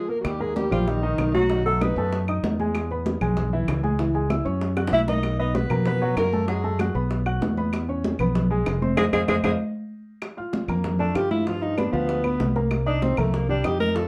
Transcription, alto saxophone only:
0, 0, Header, 1, 2, 480
1, 0, Start_track
1, 0, Tempo, 311526
1, 388, Time_signature, 4, 2, 24, 8
1, 21691, End_track
2, 0, Start_track
2, 0, Title_t, "Alto saxophone"
2, 0, Program_c, 0, 65
2, 0, Note_on_c, 0, 68, 88
2, 148, Note_on_c, 0, 70, 81
2, 171, Note_off_c, 0, 68, 0
2, 316, Note_off_c, 0, 70, 0
2, 325, Note_on_c, 0, 66, 62
2, 384, Note_on_c, 0, 67, 87
2, 407, Note_off_c, 0, 66, 0
2, 623, Note_on_c, 0, 68, 91
2, 646, Note_off_c, 0, 67, 0
2, 856, Note_off_c, 0, 68, 0
2, 865, Note_on_c, 0, 67, 89
2, 1091, Note_off_c, 0, 67, 0
2, 1117, Note_on_c, 0, 65, 91
2, 1363, Note_on_c, 0, 63, 102
2, 1386, Note_off_c, 0, 65, 0
2, 2063, Note_off_c, 0, 63, 0
2, 2072, Note_on_c, 0, 66, 104
2, 2518, Note_off_c, 0, 66, 0
2, 2554, Note_on_c, 0, 69, 97
2, 2804, Note_on_c, 0, 71, 96
2, 2827, Note_off_c, 0, 69, 0
2, 3518, Note_off_c, 0, 71, 0
2, 7598, Note_on_c, 0, 76, 99
2, 7704, Note_off_c, 0, 76, 0
2, 7841, Note_on_c, 0, 75, 108
2, 8283, Note_off_c, 0, 75, 0
2, 8313, Note_on_c, 0, 75, 97
2, 8559, Note_on_c, 0, 71, 96
2, 8583, Note_off_c, 0, 75, 0
2, 9035, Note_off_c, 0, 71, 0
2, 9041, Note_on_c, 0, 71, 103
2, 9483, Note_off_c, 0, 71, 0
2, 9514, Note_on_c, 0, 70, 97
2, 9959, Note_off_c, 0, 70, 0
2, 9982, Note_on_c, 0, 68, 79
2, 10884, Note_off_c, 0, 68, 0
2, 13829, Note_on_c, 0, 68, 94
2, 13943, Note_off_c, 0, 68, 0
2, 14069, Note_on_c, 0, 68, 105
2, 14184, Note_off_c, 0, 68, 0
2, 14313, Note_on_c, 0, 68, 97
2, 14426, Note_off_c, 0, 68, 0
2, 14552, Note_on_c, 0, 68, 94
2, 14666, Note_off_c, 0, 68, 0
2, 21691, End_track
0, 0, End_of_file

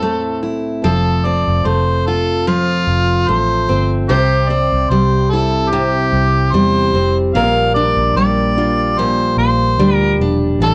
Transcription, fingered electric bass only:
0, 0, Header, 1, 2, 480
1, 0, Start_track
1, 0, Key_signature, -1, "major"
1, 0, Tempo, 813008
1, 501, Time_signature, 4, 2, 24, 8
1, 6343, End_track
2, 0, Start_track
2, 0, Title_t, "Fingered electric bass"
2, 0, Program_c, 0, 33
2, 0, Note_on_c, 0, 40, 80
2, 257, Note_off_c, 0, 40, 0
2, 257, Note_on_c, 0, 36, 78
2, 480, Note_off_c, 0, 36, 0
2, 497, Note_on_c, 0, 29, 91
2, 848, Note_off_c, 0, 29, 0
2, 871, Note_on_c, 0, 29, 85
2, 971, Note_off_c, 0, 29, 0
2, 976, Note_on_c, 0, 29, 77
2, 1675, Note_off_c, 0, 29, 0
2, 1696, Note_on_c, 0, 29, 87
2, 1920, Note_off_c, 0, 29, 0
2, 1941, Note_on_c, 0, 33, 73
2, 2162, Note_off_c, 0, 33, 0
2, 2181, Note_on_c, 0, 31, 73
2, 2402, Note_off_c, 0, 31, 0
2, 2421, Note_on_c, 0, 36, 90
2, 2770, Note_off_c, 0, 36, 0
2, 2790, Note_on_c, 0, 36, 94
2, 2891, Note_off_c, 0, 36, 0
2, 2896, Note_on_c, 0, 36, 93
2, 3596, Note_off_c, 0, 36, 0
2, 3617, Note_on_c, 0, 36, 87
2, 3840, Note_off_c, 0, 36, 0
2, 3855, Note_on_c, 0, 40, 74
2, 4093, Note_on_c, 0, 29, 73
2, 4102, Note_off_c, 0, 40, 0
2, 4318, Note_off_c, 0, 29, 0
2, 4338, Note_on_c, 0, 34, 98
2, 4688, Note_off_c, 0, 34, 0
2, 4705, Note_on_c, 0, 34, 89
2, 4808, Note_off_c, 0, 34, 0
2, 4811, Note_on_c, 0, 34, 92
2, 5513, Note_off_c, 0, 34, 0
2, 5534, Note_on_c, 0, 34, 78
2, 5758, Note_off_c, 0, 34, 0
2, 5774, Note_on_c, 0, 38, 82
2, 5998, Note_off_c, 0, 38, 0
2, 6015, Note_on_c, 0, 28, 81
2, 6239, Note_off_c, 0, 28, 0
2, 6253, Note_on_c, 0, 33, 97
2, 6343, Note_off_c, 0, 33, 0
2, 6343, End_track
0, 0, End_of_file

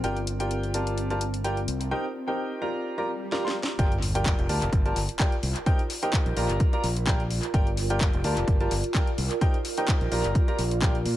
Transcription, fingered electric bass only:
0, 0, Header, 1, 2, 480
1, 0, Start_track
1, 0, Key_signature, -2, "minor"
1, 0, Tempo, 468750
1, 41, Time_signature, 4, 2, 24, 8
1, 11434, End_track
2, 0, Start_track
2, 0, Title_t, "Fingered electric bass"
2, 0, Program_c, 0, 33
2, 41, Note_on_c, 0, 31, 79
2, 1699, Note_off_c, 0, 31, 0
2, 1721, Note_on_c, 0, 36, 85
2, 1961, Note_off_c, 0, 36, 0
2, 3880, Note_on_c, 0, 31, 92
2, 4447, Note_off_c, 0, 31, 0
2, 4492, Note_on_c, 0, 29, 96
2, 4577, Note_off_c, 0, 29, 0
2, 4600, Note_on_c, 0, 38, 89
2, 4703, Note_off_c, 0, 38, 0
2, 4731, Note_on_c, 0, 29, 92
2, 4817, Note_off_c, 0, 29, 0
2, 4839, Note_on_c, 0, 31, 81
2, 5033, Note_off_c, 0, 31, 0
2, 5080, Note_on_c, 0, 31, 85
2, 5183, Note_off_c, 0, 31, 0
2, 5560, Note_on_c, 0, 36, 96
2, 5663, Note_off_c, 0, 36, 0
2, 6411, Note_on_c, 0, 34, 99
2, 6497, Note_off_c, 0, 34, 0
2, 6521, Note_on_c, 0, 34, 96
2, 6624, Note_off_c, 0, 34, 0
2, 6651, Note_on_c, 0, 31, 93
2, 6737, Note_off_c, 0, 31, 0
2, 7000, Note_on_c, 0, 34, 100
2, 7567, Note_off_c, 0, 34, 0
2, 7720, Note_on_c, 0, 31, 98
2, 8287, Note_off_c, 0, 31, 0
2, 8331, Note_on_c, 0, 29, 100
2, 8417, Note_off_c, 0, 29, 0
2, 8441, Note_on_c, 0, 38, 95
2, 8544, Note_off_c, 0, 38, 0
2, 8571, Note_on_c, 0, 29, 94
2, 8658, Note_off_c, 0, 29, 0
2, 8679, Note_on_c, 0, 31, 84
2, 8873, Note_off_c, 0, 31, 0
2, 8921, Note_on_c, 0, 31, 86
2, 9024, Note_off_c, 0, 31, 0
2, 9401, Note_on_c, 0, 36, 94
2, 9504, Note_off_c, 0, 36, 0
2, 10252, Note_on_c, 0, 34, 95
2, 10338, Note_off_c, 0, 34, 0
2, 10359, Note_on_c, 0, 34, 90
2, 10463, Note_off_c, 0, 34, 0
2, 10491, Note_on_c, 0, 31, 91
2, 10577, Note_off_c, 0, 31, 0
2, 10840, Note_on_c, 0, 34, 96
2, 11314, Note_off_c, 0, 34, 0
2, 11321, Note_on_c, 0, 46, 79
2, 11424, Note_off_c, 0, 46, 0
2, 11434, End_track
0, 0, End_of_file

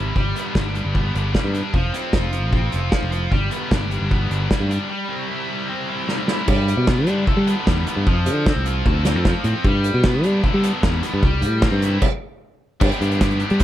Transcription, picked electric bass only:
0, 0, Header, 1, 2, 480
1, 0, Start_track
1, 0, Tempo, 395517
1, 187, Time_signature, 4, 2, 24, 8
1, 16551, End_track
2, 0, Start_track
2, 0, Title_t, "Picked electric bass"
2, 0, Program_c, 0, 34
2, 0, Note_on_c, 0, 32, 59
2, 129, Note_off_c, 0, 32, 0
2, 189, Note_on_c, 0, 31, 79
2, 390, Note_off_c, 0, 31, 0
2, 669, Note_on_c, 0, 31, 72
2, 971, Note_off_c, 0, 31, 0
2, 1029, Note_on_c, 0, 31, 72
2, 1331, Note_off_c, 0, 31, 0
2, 1392, Note_on_c, 0, 31, 80
2, 1591, Note_off_c, 0, 31, 0
2, 1752, Note_on_c, 0, 43, 62
2, 1951, Note_off_c, 0, 43, 0
2, 2109, Note_on_c, 0, 29, 76
2, 2309, Note_off_c, 0, 29, 0
2, 2588, Note_on_c, 0, 29, 76
2, 2951, Note_off_c, 0, 29, 0
2, 2951, Note_on_c, 0, 33, 74
2, 3251, Note_off_c, 0, 33, 0
2, 3325, Note_on_c, 0, 29, 79
2, 3518, Note_off_c, 0, 29, 0
2, 3669, Note_on_c, 0, 29, 65
2, 3970, Note_off_c, 0, 29, 0
2, 4023, Note_on_c, 0, 31, 85
2, 4225, Note_off_c, 0, 31, 0
2, 4509, Note_on_c, 0, 31, 76
2, 4810, Note_off_c, 0, 31, 0
2, 4864, Note_on_c, 0, 31, 75
2, 5168, Note_off_c, 0, 31, 0
2, 5218, Note_on_c, 0, 31, 83
2, 5423, Note_off_c, 0, 31, 0
2, 5587, Note_on_c, 0, 43, 66
2, 5789, Note_off_c, 0, 43, 0
2, 7869, Note_on_c, 0, 43, 93
2, 8173, Note_off_c, 0, 43, 0
2, 8222, Note_on_c, 0, 47, 88
2, 8583, Note_off_c, 0, 47, 0
2, 8583, Note_on_c, 0, 55, 89
2, 8788, Note_off_c, 0, 55, 0
2, 8943, Note_on_c, 0, 55, 77
2, 9148, Note_off_c, 0, 55, 0
2, 9312, Note_on_c, 0, 40, 97
2, 9514, Note_off_c, 0, 40, 0
2, 9666, Note_on_c, 0, 43, 76
2, 9769, Note_off_c, 0, 43, 0
2, 9793, Note_on_c, 0, 41, 100
2, 10028, Note_on_c, 0, 50, 80
2, 10046, Note_off_c, 0, 41, 0
2, 10333, Note_off_c, 0, 50, 0
2, 10391, Note_on_c, 0, 36, 86
2, 10694, Note_off_c, 0, 36, 0
2, 10751, Note_on_c, 0, 38, 97
2, 11112, Note_off_c, 0, 38, 0
2, 11112, Note_on_c, 0, 41, 84
2, 11314, Note_off_c, 0, 41, 0
2, 11460, Note_on_c, 0, 45, 95
2, 11565, Note_off_c, 0, 45, 0
2, 11704, Note_on_c, 0, 43, 101
2, 12010, Note_off_c, 0, 43, 0
2, 12065, Note_on_c, 0, 47, 96
2, 12430, Note_off_c, 0, 47, 0
2, 12430, Note_on_c, 0, 55, 96
2, 12632, Note_off_c, 0, 55, 0
2, 12792, Note_on_c, 0, 55, 85
2, 12993, Note_off_c, 0, 55, 0
2, 13143, Note_on_c, 0, 40, 104
2, 13348, Note_off_c, 0, 40, 0
2, 13514, Note_on_c, 0, 43, 78
2, 13613, Note_off_c, 0, 43, 0
2, 13622, Note_on_c, 0, 36, 98
2, 13854, Note_on_c, 0, 45, 84
2, 13873, Note_off_c, 0, 36, 0
2, 14165, Note_off_c, 0, 45, 0
2, 14216, Note_on_c, 0, 43, 90
2, 14525, Note_off_c, 0, 43, 0
2, 15548, Note_on_c, 0, 43, 100
2, 15650, Note_off_c, 0, 43, 0
2, 15787, Note_on_c, 0, 43, 80
2, 16295, Note_off_c, 0, 43, 0
2, 16396, Note_on_c, 0, 55, 91
2, 16494, Note_off_c, 0, 55, 0
2, 16502, Note_on_c, 0, 38, 93
2, 16551, Note_off_c, 0, 38, 0
2, 16551, End_track
0, 0, End_of_file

